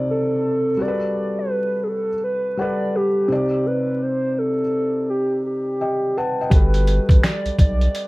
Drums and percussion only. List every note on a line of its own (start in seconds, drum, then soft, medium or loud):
6.51 kick loud
6.51 closed hi-hat medium
6.74 closed hi-hat soft
6.87 closed hi-hat medium
7.09 kick medium
7.09 closed hi-hat soft
7.23 finger snap medium
7.23 snare medium
7.23 closed hi-hat medium
7.46 closed hi-hat soft
7.59 kick medium
7.59 closed hi-hat medium
7.81 closed hi-hat soft
7.95 closed hi-hat medium